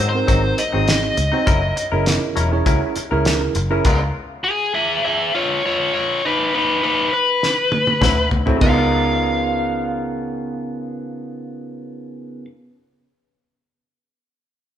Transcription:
Already playing: G#2
0.00 G#2 F#3 C4 D#4
0.09 C5
0.13 C4 D#4 F#4 A#4, muted clean electric guitar stroke
0.27 G#1 G#2 F#3 C4 D#4, kick, closed hi-hat
0.43 muted clean electric guitar stroke
0.58 D#5, muted clean electric guitar stroke, closed hi-hat
0.72 G#1 F#3 C4 D#4 F#4 G#4
0.88 snare, closed hi-hat
1.03 muted clean electric guitar stroke
1.17 C#2, muted clean electric guitar stroke, closed hi-hat
1.32 F#3 C4 D#4 F#4 C5
1.46 F#1 F#3 C#4 E4 A#4, kick, closed hi-hat
1.62 muted clean electric guitar stroke
1.76 muted clean electric guitar stroke, closed hi-hat
1.92 F#1 C#4 E4 G#4 A#4
2.06 muted clean electric guitar stroke, snare, closed hi-hat
2.36 E1 F#3 C#4 E4 A#4, closed hi-hat
2.52 C#4 E4 G#4 C#5, muted clean electric guitar stroke
2.66 C#2 F#3 C#4 E4 A#4, kick, closed hi-hat
2.82 muted clean electric guitar stroke
2.96 muted fingered electric bass stroke, muted clean electric guitar stroke, closed hi-hat
3.11 C#2 C#4 E4 G#4 A#4
3.25 snare, closed hi-hat
3.41 muted clean electric guitar stroke
3.55 F#1, muted clean electric guitar stroke, closed hi-hat
3.71 C#4 E4 G#4 A#4
3.85 C#2 C#3 B3 F4 A#4, kick, closed hi-hat, crash
4.01 muted clean electric guitar stroke
4.44 G#4 E5
4.74 G#4 E5
5.05 G#4 E5
5.35 F4 C#5
5.66 F4 C#5
5.94 F4 C#5
6.25 D#4 B4
6.54 D#4 B4
6.83 D#4 B4
7.13 B4
7.43 snare
7.72 high tom
7.87 high tom
8.01 D2 D3 F#3 C4 E4, kick, snare, mid tom
8.17 muted clean electric guitar stroke
8.31 D2, muted clean electric guitar stroke, floor tom
8.46 F#3 C4 E4 F#4 A4, floor tom
8.56 C#3 B3 D#4
8.61 C#2 B3 F4 A#4 F5, kick, crash
8.66 F4 A#4

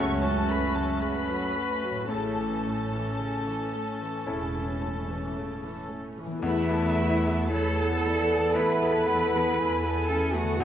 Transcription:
Already playing: C#2 F#2 C#3 A3 C#4 F#4 A4 C#5 C#6
0.22 F#3 A4 A5
0.49 A3 B4 B5
0.75 F#3 A4 A5
1.02 C#3 F#4 B4 B5
1.28 F#3
1.56 A3
1.83 F#3
1.91 A2
1.95 C#4
2.00 E4
2.04 A4
2.08 A1 A2 C#3 C#4 A4 A5
2.39 E3
2.66 A3
2.92 E3
3.19 C#3
3.48 E3
3.75 A3
4.02 E3
4.27 E1 E2 C#3 C#4 E4 A4
4.56 E3
4.84 A3
5.10 E3
5.37 C#3
5.64 E3
5.91 A3
6.19 E3
6.26 E3
6.31 B3
6.35 E4
6.39 E2 A3 A4
6.44 A3 B3 E4 A4 B4 E5 B5
6.70 B3 A4 A5
6.98 A3 E4 B5
7.25 B3 A4 A5
7.50 E2 A3 E4 A4 C#5 A5 B5
7.78 B3 A4 A5
8.05 A3 E4 D5 B5
8.31 B3 A4 A5
8.54 E2 A3 B3 E4 A4 B4 E5 B5
8.82 B3 A4 A5
9.07 A3 E4 F#5 B5
9.33 B3 A4 A5
9.58 E2 A3 E4 G#5 B5
9.84 B3 A4 A5
10.09 A3 C#4 E4 A4 A5 B5
10.35 A3 B3 F#4 A4 F#5 A5
10.43 D3
10.47 B3
10.52 F#4
10.56 D2 B3 F#4 G#4 B4
10.61 F#5 G#5

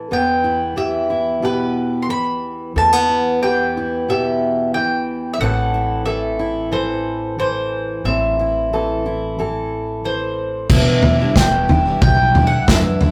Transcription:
Already playing: E3 E4
0.11 E2 B3 G5
0.44 E4
0.76 E3 G4 E5
1.10 E4
1.42 B2 G4 B4
2.02 C6
2.09 E3 B5
2.76 E2 A3 A5
2.93 B3
3.09 E4
3.43 E3 G4 G5
3.77 E4
4.09 B2 G4 E5
4.74 E3 G5
5.34 E5
5.40 A1 A2 E3 C4 E4 A4 F#5
5.74 E4
6.06 E3 A4 E5
6.39 E4
6.72 E3 A4 C5
7.39 E3 C5
8.04 A1 A2 C4 E5
8.39 E4
8.73 E3 A4
9.06 E4
9.39 E3 A4
10.04 E3 C5
10.70 E1 E2 B2 E3 G3 D4 E4 E5, kick, floor tom, crash
11.02 E3 G3 D4 E4, floor tom
11.20 E3 G3 D4 E4
11.36 E1 E2 B2 E3 G3 D4 E4 G5, kick, snare, floor tom
11.68 E3 G3 D4 E4, floor tom
11.85 E3 G3 D4 E4
12.02 B1 G5, kick, floor tom
12.17 E3 G3 D4 E4
12.34 E3 G3 D4 E4, floor tom
12.47 F#5
12.67 E2 F#2 B2 E3 D4 E4 E5, kick, snare, floor tom
12.99 E3 D4 E4, floor tom

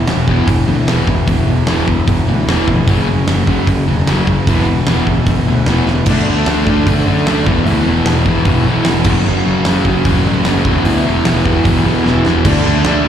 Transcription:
Already playing: E2 B2 E3
0.08 E1 E2 B2, snare, open hi-hat
0.27 E1 E2 B2 E3, kick
0.47 E1 E2 B2, kick, open hi-hat
0.66 D2 E2 B2 E3
0.87 E1 E2 B2 E3, snare, open hi-hat
1.07 E1 E2 B2, kick
1.27 E1 E2 B2 E3, kick, open hi-hat
1.47 E1 E2 B2
1.67 E1 E2 B2 E3, snare, open hi-hat
1.88 E1 E2 B2, kick
2.07 E1 E2 B2, kick, open hi-hat
2.27 D2 E2 B2 E3
2.48 E1 E2 B2 E3, snare, open hi-hat
2.68 F1 E2 B2, kick
2.87 F#1 F#2 C#3 F#3, kick, open hi-hat
3.08 F#1 F#2 C#3
3.28 F#1 F#2 C#3, snare, open hi-hat
3.47 F#1 F#2 C#3 F#3, kick
3.67 F#1 F#2 C#3, kick, open hi-hat
3.87 E1 F#2 C#3 F#3
4.07 F#1 F#2 C#3 F#3, snare, open hi-hat
4.27 F#1 F#2 C#3, kick
4.47 E1 E2 B2 E3, kick, open hi-hat
4.67 E1 E2 B2
4.87 E1 E2 B2 E3, snare, open hi-hat
5.07 E1 E2 B2, kick
5.26 E1 E2 B2, kick, open hi-hat
5.47 D2 E2 B2 E3
5.66 E1 E2 B2, snare, open hi-hat
5.71 E3
5.87 E1 E2 B2, snare
6.06 D2 D3 A3, kick, crash
6.10 D4
6.25 D2
6.30 D3 A3 D4
6.46 D2 D3 A3 D4, snare, open hi-hat
6.66 D2 D3 A3 D4, kick
6.86 B1 D3 A3 D4, kick, open hi-hat
7.06 F#2 D3 A3 D4
7.26 D2 D3 A3 D4, snare, open hi-hat
7.46 E1 E2 B2 E3, kick
7.65 D2 E2 B2 E3, open hi-hat
7.84 E1 E2
7.88 B2 E3
8.04 E1 E2, snare, open hi-hat
8.09 B2 E3
8.26 E1 E2 B2 E3, kick
8.45 E1 E2 B2 E3, kick, open hi-hat
8.65 B1 E2 B2 E3
8.85 E1 E2 B2 E3, snare, open hi-hat
9.04 F#1 F#2 C#3 F#3, kick, crash
9.26 F#1 F#2 C#3 F#3
9.46 F#1 F#2 C#3 F#3
9.65 F#1 F#2 C#3 F#3, snare, open hi-hat
9.85 F#1 F#2 C#3 F#3, kick
10.05 E1 F#2 C#3 F#3, kick, open hi-hat
10.25 A1 F#2 C#3 F#3
10.45 F#1 F#2 C#3 F#3, snare, open hi-hat
10.65 E1 E2 B2 E3, kick
10.84 D2 E2 B2 E3, open hi-hat
11.05 E1 E2 B2 E3
11.25 E1 E2 B2 E3, snare, open hi-hat
11.45 E1 E2 B2 E3, kick
11.65 E1 E2 B2 E3, kick, open hi-hat
11.85 B1 E2 B2 E3
12.04 E1 E2 B2 E3, snare
12.25 E1 E2 B2 E3, snare
12.45 D2 D3 A3 D4, kick, crash
12.65 D2 D3 A3 D4
12.85 D2 D3 A3 D4, snare, crash
13.04 D2

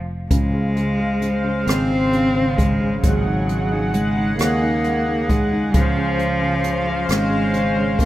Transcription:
Already playing: F1
0.30 C#2 C#3 G#3 C5 F5, kick, closed hi-hat
0.53 C#3
0.76 C#3, closed hi-hat
0.99 C#3
1.21 C#3, closed hi-hat
1.44 C#3
1.66 G#1 G#3 C4, cross-stick, closed hi-hat
1.90 C#3
2.12 C#3, closed hi-hat
2.35 C#3
2.57 C#3 G#3, kick, closed hi-hat
2.81 C#3
3.02 G#1 F#3 G#3 G#4 F#5, kick, closed hi-hat
3.26 D#4
3.49 G#3, closed hi-hat
3.71 D#4
3.94 G#3, closed hi-hat
4.16 D#4
4.38 D#2 G#3 A#3, cross-stick, closed hi-hat
4.62 D#4
4.84 G#3, closed hi-hat
5.07 D#4
5.29 G#3, kick, closed hi-hat
5.52 D#4
5.74 C#2 C#3 F3 C#4 C5 F5, kick, closed hi-hat
5.97 C#3
6.19 C#3, closed hi-hat
6.41 C#3
6.64 C#3, closed hi-hat
6.86 C#3
7.09 G#1 G#3, cross-stick, closed hi-hat
7.31 C#3
7.53 C#3, closed hi-hat
7.77 C#3
7.99 C#3 A#3, kick, closed hi-hat

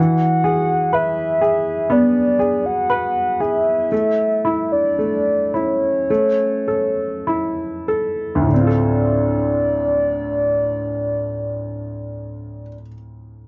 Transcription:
Already playing: E3
0.00 F#5
0.44 G#4
0.93 B4 E5
1.41 G#4
1.90 B3 D5
2.39 G#4
2.66 F#5
2.90 B4
3.40 G#4 E5
3.92 A3
4.45 E4
4.72 D5
4.99 A3
5.54 E4 C#5
6.10 A3
6.68 A4
7.27 E4
7.88 A4
8.35 D2
8.42 A2
8.48 D3 D5
8.54 C4
8.61 F4
8.67 A4

